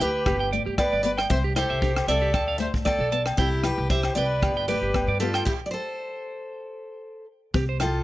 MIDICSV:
0, 0, Header, 1, 7, 480
1, 0, Start_track
1, 0, Key_signature, 0, "major"
1, 0, Tempo, 520562
1, 1201, Time_signature, 4, 2, 24, 8
1, 7408, End_track
2, 0, Start_track
2, 0, Title_t, "Clean electric guitar"
2, 0, Program_c, 0, 27
2, 248, Note_on_c, 0, 67, 67
2, 331, Note_off_c, 0, 67, 0
2, 372, Note_on_c, 0, 79, 84
2, 446, Note_off_c, 0, 79, 0
2, 484, Note_on_c, 0, 74, 65
2, 569, Note_off_c, 0, 74, 0
2, 611, Note_on_c, 0, 67, 59
2, 686, Note_off_c, 0, 67, 0
2, 854, Note_on_c, 0, 74, 67
2, 927, Note_off_c, 0, 74, 0
2, 1091, Note_on_c, 0, 79, 90
2, 1166, Note_off_c, 0, 79, 0
2, 1330, Note_on_c, 0, 67, 66
2, 1405, Note_off_c, 0, 67, 0
2, 1442, Note_on_c, 0, 79, 78
2, 1527, Note_off_c, 0, 79, 0
2, 1568, Note_on_c, 0, 76, 67
2, 1643, Note_off_c, 0, 76, 0
2, 1681, Note_on_c, 0, 67, 71
2, 1766, Note_off_c, 0, 67, 0
2, 1922, Note_on_c, 0, 76, 74
2, 2007, Note_off_c, 0, 76, 0
2, 2044, Note_on_c, 0, 67, 64
2, 2121, Note_off_c, 0, 67, 0
2, 2162, Note_on_c, 0, 81, 86
2, 2247, Note_off_c, 0, 81, 0
2, 2285, Note_on_c, 0, 77, 76
2, 2362, Note_off_c, 0, 77, 0
2, 2769, Note_on_c, 0, 69, 62
2, 2844, Note_off_c, 0, 69, 0
2, 2879, Note_on_c, 0, 81, 81
2, 2966, Note_off_c, 0, 81, 0
2, 3124, Note_on_c, 0, 79, 84
2, 3209, Note_off_c, 0, 79, 0
2, 3606, Note_on_c, 0, 76, 79
2, 3690, Note_off_c, 0, 76, 0
2, 3850, Note_on_c, 0, 79, 88
2, 3932, Note_off_c, 0, 79, 0
2, 4087, Note_on_c, 0, 67, 65
2, 4171, Note_off_c, 0, 67, 0
2, 4213, Note_on_c, 0, 79, 85
2, 4287, Note_off_c, 0, 79, 0
2, 4320, Note_on_c, 0, 74, 68
2, 4406, Note_off_c, 0, 74, 0
2, 4452, Note_on_c, 0, 67, 60
2, 4526, Note_off_c, 0, 67, 0
2, 4688, Note_on_c, 0, 74, 65
2, 4764, Note_off_c, 0, 74, 0
2, 4803, Note_on_c, 0, 67, 62
2, 4888, Note_off_c, 0, 67, 0
2, 4927, Note_on_c, 0, 79, 88
2, 5003, Note_off_c, 0, 79, 0
2, 6960, Note_on_c, 0, 67, 81
2, 7046, Note_off_c, 0, 67, 0
2, 7090, Note_on_c, 0, 72, 63
2, 7165, Note_off_c, 0, 72, 0
2, 7408, End_track
3, 0, Start_track
3, 0, Title_t, "Steel-string acoustic guitar"
3, 0, Program_c, 1, 25
3, 13, Note_on_c, 1, 71, 88
3, 20, Note_on_c, 1, 67, 72
3, 454, Note_off_c, 1, 71, 0
3, 457, Note_off_c, 1, 67, 0
3, 722, Note_on_c, 1, 74, 93
3, 730, Note_on_c, 1, 71, 70
3, 938, Note_off_c, 1, 74, 0
3, 949, Note_off_c, 1, 71, 0
3, 949, Note_on_c, 1, 74, 91
3, 959, Note_on_c, 1, 71, 73
3, 1015, Note_off_c, 1, 74, 0
3, 1024, Note_off_c, 1, 71, 0
3, 1197, Note_on_c, 1, 76, 106
3, 1206, Note_on_c, 1, 72, 80
3, 1262, Note_off_c, 1, 76, 0
3, 1270, Note_off_c, 1, 72, 0
3, 1439, Note_on_c, 1, 72, 84
3, 1456, Note_on_c, 1, 69, 70
3, 1886, Note_off_c, 1, 72, 0
3, 1895, Note_off_c, 1, 69, 0
3, 1921, Note_on_c, 1, 74, 89
3, 1940, Note_on_c, 1, 69, 70
3, 2376, Note_off_c, 1, 74, 0
3, 2377, Note_off_c, 1, 69, 0
3, 2380, Note_on_c, 1, 76, 91
3, 2397, Note_on_c, 1, 72, 75
3, 2447, Note_off_c, 1, 76, 0
3, 2462, Note_off_c, 1, 72, 0
3, 2628, Note_on_c, 1, 74, 88
3, 2651, Note_on_c, 1, 69, 70
3, 2976, Note_off_c, 1, 74, 0
3, 2988, Note_off_c, 1, 69, 0
3, 3110, Note_on_c, 1, 67, 86
3, 3133, Note_on_c, 1, 64, 69
3, 3350, Note_off_c, 1, 64, 0
3, 3359, Note_on_c, 1, 71, 83
3, 3362, Note_off_c, 1, 67, 0
3, 3380, Note_on_c, 1, 67, 62
3, 3592, Note_off_c, 1, 71, 0
3, 3594, Note_off_c, 1, 67, 0
3, 3596, Note_on_c, 1, 72, 86
3, 3616, Note_on_c, 1, 67, 66
3, 3823, Note_off_c, 1, 72, 0
3, 3827, Note_on_c, 1, 74, 85
3, 3832, Note_off_c, 1, 67, 0
3, 3848, Note_on_c, 1, 71, 72
3, 4280, Note_off_c, 1, 74, 0
3, 4291, Note_off_c, 1, 71, 0
3, 4315, Note_on_c, 1, 71, 90
3, 4339, Note_on_c, 1, 67, 71
3, 4777, Note_off_c, 1, 67, 0
3, 4790, Note_off_c, 1, 71, 0
3, 4794, Note_on_c, 1, 69, 79
3, 4814, Note_on_c, 1, 65, 64
3, 5025, Note_off_c, 1, 69, 0
3, 5028, Note_on_c, 1, 67, 85
3, 5031, Note_off_c, 1, 65, 0
3, 5045, Note_on_c, 1, 64, 68
3, 5078, Note_off_c, 1, 67, 0
3, 5093, Note_off_c, 1, 64, 0
3, 5218, Note_on_c, 1, 74, 60
3, 5260, Note_off_c, 1, 74, 0
3, 5263, Note_on_c, 1, 72, 68
3, 5289, Note_on_c, 1, 69, 60
3, 6675, Note_off_c, 1, 72, 0
3, 6688, Note_off_c, 1, 69, 0
3, 7208, Note_on_c, 1, 69, 69
3, 7218, Note_on_c, 1, 65, 59
3, 7408, Note_off_c, 1, 65, 0
3, 7408, Note_off_c, 1, 69, 0
3, 7408, End_track
4, 0, Start_track
4, 0, Title_t, "Trumpet"
4, 0, Program_c, 2, 56
4, 9, Note_on_c, 2, 67, 80
4, 452, Note_off_c, 2, 67, 0
4, 736, Note_on_c, 2, 71, 72
4, 952, Note_off_c, 2, 71, 0
4, 974, Note_on_c, 2, 71, 78
4, 1079, Note_off_c, 2, 71, 0
4, 1212, Note_on_c, 2, 72, 92
4, 1317, Note_off_c, 2, 72, 0
4, 1449, Note_on_c, 2, 67, 77
4, 1891, Note_off_c, 2, 67, 0
4, 1931, Note_on_c, 2, 69, 86
4, 2372, Note_off_c, 2, 69, 0
4, 2407, Note_on_c, 2, 72, 72
4, 2514, Note_off_c, 2, 72, 0
4, 2642, Note_on_c, 2, 69, 80
4, 2983, Note_off_c, 2, 69, 0
4, 3120, Note_on_c, 2, 64, 80
4, 3344, Note_off_c, 2, 64, 0
4, 3360, Note_on_c, 2, 67, 63
4, 3583, Note_off_c, 2, 67, 0
4, 3603, Note_on_c, 2, 67, 70
4, 3825, Note_off_c, 2, 67, 0
4, 3839, Note_on_c, 2, 71, 80
4, 4286, Note_off_c, 2, 71, 0
4, 4315, Note_on_c, 2, 67, 70
4, 4764, Note_off_c, 2, 67, 0
4, 4804, Note_on_c, 2, 65, 65
4, 5026, Note_off_c, 2, 65, 0
4, 7213, Note_on_c, 2, 65, 58
4, 7408, Note_off_c, 2, 65, 0
4, 7408, End_track
5, 0, Start_track
5, 0, Title_t, "Nylon-string guitar"
5, 0, Program_c, 3, 24
5, 2, Note_on_c, 3, 64, 74
5, 203, Note_off_c, 3, 64, 0
5, 245, Note_on_c, 3, 67, 74
5, 445, Note_off_c, 3, 67, 0
5, 487, Note_on_c, 3, 57, 75
5, 686, Note_off_c, 3, 57, 0
5, 730, Note_on_c, 3, 59, 74
5, 927, Note_off_c, 3, 59, 0
5, 970, Note_on_c, 3, 59, 70
5, 1167, Note_off_c, 3, 59, 0
5, 1202, Note_on_c, 3, 60, 85
5, 1403, Note_off_c, 3, 60, 0
5, 1447, Note_on_c, 3, 64, 68
5, 1645, Note_off_c, 3, 64, 0
5, 1689, Note_on_c, 3, 62, 72
5, 1886, Note_off_c, 3, 62, 0
5, 1923, Note_on_c, 3, 60, 71
5, 2123, Note_off_c, 3, 60, 0
5, 2153, Note_on_c, 3, 62, 79
5, 2358, Note_off_c, 3, 62, 0
5, 2391, Note_on_c, 3, 57, 72
5, 2596, Note_off_c, 3, 57, 0
5, 2637, Note_on_c, 3, 59, 75
5, 2839, Note_off_c, 3, 59, 0
5, 2882, Note_on_c, 3, 59, 66
5, 3083, Note_off_c, 3, 59, 0
5, 3119, Note_on_c, 3, 60, 88
5, 3321, Note_off_c, 3, 60, 0
5, 3349, Note_on_c, 3, 64, 71
5, 3555, Note_off_c, 3, 64, 0
5, 3592, Note_on_c, 3, 62, 70
5, 3797, Note_off_c, 3, 62, 0
5, 3835, Note_on_c, 3, 60, 67
5, 4039, Note_off_c, 3, 60, 0
5, 4075, Note_on_c, 3, 62, 80
5, 4279, Note_off_c, 3, 62, 0
5, 4324, Note_on_c, 3, 57, 76
5, 4524, Note_off_c, 3, 57, 0
5, 4561, Note_on_c, 3, 59, 78
5, 4762, Note_off_c, 3, 59, 0
5, 4814, Note_on_c, 3, 59, 67
5, 5009, Note_off_c, 3, 59, 0
5, 6962, Note_on_c, 3, 60, 86
5, 7163, Note_off_c, 3, 60, 0
5, 7197, Note_on_c, 3, 64, 73
5, 7400, Note_off_c, 3, 64, 0
5, 7408, End_track
6, 0, Start_track
6, 0, Title_t, "Upright bass"
6, 0, Program_c, 4, 32
6, 3, Note_on_c, 4, 38, 88
6, 243, Note_on_c, 4, 31, 88
6, 256, Note_off_c, 4, 38, 0
6, 551, Note_off_c, 4, 31, 0
6, 618, Note_on_c, 4, 31, 76
6, 815, Note_off_c, 4, 31, 0
6, 858, Note_on_c, 4, 31, 74
6, 1150, Note_off_c, 4, 31, 0
6, 1200, Note_on_c, 4, 36, 81
6, 1509, Note_off_c, 4, 36, 0
6, 1571, Note_on_c, 4, 36, 84
6, 1866, Note_off_c, 4, 36, 0
6, 1913, Note_on_c, 4, 36, 84
6, 2157, Note_off_c, 4, 36, 0
6, 2157, Note_on_c, 4, 38, 90
6, 2467, Note_off_c, 4, 38, 0
6, 2529, Note_on_c, 4, 38, 78
6, 2730, Note_off_c, 4, 38, 0
6, 2753, Note_on_c, 4, 35, 76
6, 3055, Note_off_c, 4, 35, 0
6, 3116, Note_on_c, 4, 36, 87
6, 3427, Note_off_c, 4, 36, 0
6, 3484, Note_on_c, 4, 36, 89
6, 3781, Note_off_c, 4, 36, 0
6, 3835, Note_on_c, 4, 36, 89
6, 4081, Note_on_c, 4, 31, 84
6, 4095, Note_off_c, 4, 36, 0
6, 4390, Note_off_c, 4, 31, 0
6, 4440, Note_on_c, 4, 31, 75
6, 4645, Note_off_c, 4, 31, 0
6, 4678, Note_on_c, 4, 43, 81
6, 4978, Note_off_c, 4, 43, 0
6, 6955, Note_on_c, 4, 36, 83
6, 7408, Note_off_c, 4, 36, 0
6, 7408, End_track
7, 0, Start_track
7, 0, Title_t, "Drums"
7, 5, Note_on_c, 9, 42, 44
7, 97, Note_off_c, 9, 42, 0
7, 239, Note_on_c, 9, 68, 62
7, 241, Note_on_c, 9, 36, 85
7, 242, Note_on_c, 9, 37, 70
7, 331, Note_off_c, 9, 68, 0
7, 333, Note_off_c, 9, 36, 0
7, 334, Note_off_c, 9, 37, 0
7, 488, Note_on_c, 9, 42, 49
7, 580, Note_off_c, 9, 42, 0
7, 719, Note_on_c, 9, 68, 60
7, 720, Note_on_c, 9, 36, 66
7, 720, Note_on_c, 9, 37, 62
7, 812, Note_off_c, 9, 36, 0
7, 812, Note_off_c, 9, 37, 0
7, 812, Note_off_c, 9, 68, 0
7, 963, Note_on_c, 9, 42, 47
7, 1056, Note_off_c, 9, 42, 0
7, 1085, Note_on_c, 9, 68, 66
7, 1093, Note_on_c, 9, 37, 69
7, 1177, Note_off_c, 9, 68, 0
7, 1185, Note_off_c, 9, 37, 0
7, 1201, Note_on_c, 9, 36, 86
7, 1293, Note_off_c, 9, 36, 0
7, 1439, Note_on_c, 9, 68, 58
7, 1441, Note_on_c, 9, 37, 68
7, 1441, Note_on_c, 9, 42, 54
7, 1531, Note_off_c, 9, 68, 0
7, 1534, Note_off_c, 9, 37, 0
7, 1534, Note_off_c, 9, 42, 0
7, 1679, Note_on_c, 9, 36, 76
7, 1771, Note_off_c, 9, 36, 0
7, 1812, Note_on_c, 9, 37, 72
7, 1813, Note_on_c, 9, 68, 66
7, 1904, Note_off_c, 9, 37, 0
7, 1906, Note_off_c, 9, 68, 0
7, 1922, Note_on_c, 9, 42, 50
7, 2014, Note_off_c, 9, 42, 0
7, 2156, Note_on_c, 9, 68, 63
7, 2157, Note_on_c, 9, 37, 66
7, 2158, Note_on_c, 9, 36, 84
7, 2249, Note_off_c, 9, 37, 0
7, 2249, Note_off_c, 9, 68, 0
7, 2250, Note_off_c, 9, 36, 0
7, 2402, Note_on_c, 9, 42, 48
7, 2494, Note_off_c, 9, 42, 0
7, 2526, Note_on_c, 9, 36, 65
7, 2618, Note_off_c, 9, 36, 0
7, 2637, Note_on_c, 9, 36, 58
7, 2637, Note_on_c, 9, 37, 64
7, 2637, Note_on_c, 9, 68, 59
7, 2729, Note_off_c, 9, 36, 0
7, 2729, Note_off_c, 9, 68, 0
7, 2730, Note_off_c, 9, 37, 0
7, 2877, Note_on_c, 9, 42, 50
7, 2969, Note_off_c, 9, 42, 0
7, 3003, Note_on_c, 9, 37, 62
7, 3011, Note_on_c, 9, 68, 69
7, 3095, Note_off_c, 9, 37, 0
7, 3103, Note_off_c, 9, 68, 0
7, 3118, Note_on_c, 9, 36, 90
7, 3210, Note_off_c, 9, 36, 0
7, 3352, Note_on_c, 9, 37, 69
7, 3352, Note_on_c, 9, 42, 45
7, 3359, Note_on_c, 9, 68, 58
7, 3444, Note_off_c, 9, 37, 0
7, 3444, Note_off_c, 9, 42, 0
7, 3451, Note_off_c, 9, 68, 0
7, 3596, Note_on_c, 9, 36, 71
7, 3689, Note_off_c, 9, 36, 0
7, 3719, Note_on_c, 9, 37, 65
7, 3731, Note_on_c, 9, 68, 60
7, 3812, Note_off_c, 9, 37, 0
7, 3823, Note_off_c, 9, 68, 0
7, 3840, Note_on_c, 9, 42, 44
7, 3932, Note_off_c, 9, 42, 0
7, 4080, Note_on_c, 9, 36, 84
7, 4083, Note_on_c, 9, 37, 74
7, 4084, Note_on_c, 9, 68, 63
7, 4172, Note_off_c, 9, 36, 0
7, 4175, Note_off_c, 9, 37, 0
7, 4177, Note_off_c, 9, 68, 0
7, 4318, Note_on_c, 9, 42, 47
7, 4411, Note_off_c, 9, 42, 0
7, 4559, Note_on_c, 9, 36, 61
7, 4559, Note_on_c, 9, 37, 62
7, 4570, Note_on_c, 9, 68, 58
7, 4651, Note_off_c, 9, 36, 0
7, 4651, Note_off_c, 9, 37, 0
7, 4662, Note_off_c, 9, 68, 0
7, 4795, Note_on_c, 9, 42, 48
7, 4888, Note_off_c, 9, 42, 0
7, 4924, Note_on_c, 9, 37, 67
7, 4932, Note_on_c, 9, 68, 67
7, 5016, Note_off_c, 9, 37, 0
7, 5024, Note_off_c, 9, 68, 0
7, 5038, Note_on_c, 9, 49, 71
7, 5040, Note_on_c, 9, 36, 82
7, 5130, Note_off_c, 9, 49, 0
7, 5132, Note_off_c, 9, 36, 0
7, 6956, Note_on_c, 9, 36, 87
7, 7048, Note_off_c, 9, 36, 0
7, 7191, Note_on_c, 9, 37, 68
7, 7191, Note_on_c, 9, 42, 53
7, 7199, Note_on_c, 9, 68, 61
7, 7284, Note_off_c, 9, 37, 0
7, 7284, Note_off_c, 9, 42, 0
7, 7291, Note_off_c, 9, 68, 0
7, 7408, End_track
0, 0, End_of_file